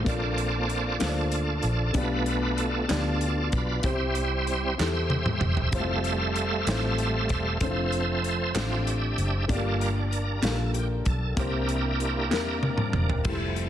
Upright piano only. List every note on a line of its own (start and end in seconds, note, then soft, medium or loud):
0.04 0.97 A#2 medium
0.04 0.87 A#3 medium
0.04 0.88 D4 medium
0.04 0.88 F4 medium
0.04 0.88 A4 medium
0.04 0.89 D5 medium
0.99 1.82 A#3 medium
0.99 1.82 D4 medium
0.99 1.83 F4 medium
0.99 1.83 A4 medium
0.99 1.08 C5 medium
1.09 1.87 D5 medium
1.93 2.85 B2 medium
1.93 2.76 B3 medium
1.93 2.76 D4 medium
1.93 2.77 F4 medium
1.93 2.77 G4 medium
1.93 2.77 D5 medium
2.88 3.71 B3 medium
2.88 3.71 D4 medium
2.88 3.71 F4 medium
2.88 3.72 G4 medium
2.88 3.72 D5 medium
3.82 4.74 C3 medium
3.82 4.65 E4 medium
3.82 4.65 G4 medium
3.82 4.66 C5 medium
4.78 5.60 E4 medium
4.78 5.61 G4 medium
4.78 5.61 A4 medium
5.72 5.79 G3 medium
5.72 6.54 C4 medium
5.72 6.55 E4 medium
5.72 6.55 F4 medium
5.72 6.55 C5 medium
5.78 6.57 A3 medium
6.67 7.48 A3 medium
6.67 7.49 C4 medium
6.67 7.49 E4 medium
6.67 7.49 F4 medium
6.67 7.50 C5 medium
7.60 8.42 A3 medium
7.60 8.43 C4 medium
7.60 8.43 D4 medium
7.60 7.68 E4 medium
7.60 8.44 C5 medium
7.69 8.47 F4 medium
8.55 9.36 A3 medium
8.55 9.37 C4 medium
8.55 9.37 D4 medium
8.55 9.38 F4 medium
8.55 9.38 C5 medium
9.48 10.39 G2 medium
9.48 9.55 A3 medium
9.48 10.30 D4 medium
9.48 10.31 F4 medium
9.48 10.31 G4 medium
9.48 10.31 D5 medium
9.54 10.33 A#3 medium
10.42 11.24 A#3 medium
10.42 11.24 D4 medium
10.42 11.25 F4 medium
10.42 11.25 G4 medium
10.42 10.51 A4 medium
10.51 11.29 A#4 medium
11.36 12.28 C3 medium
11.36 12.18 A#3 medium
11.36 12.19 C4 medium
11.36 12.19 E4 medium
11.36 12.20 G4 medium
11.36 12.20 C5 medium
12.31 13.13 A#3 medium
12.31 13.13 C4 medium
12.31 13.14 E4 medium
12.31 13.14 G4 medium
12.31 13.14 A#4 medium
13.25 13.67 G3 soft
13.25 13.68 A3 soft
13.25 13.68 E4 medium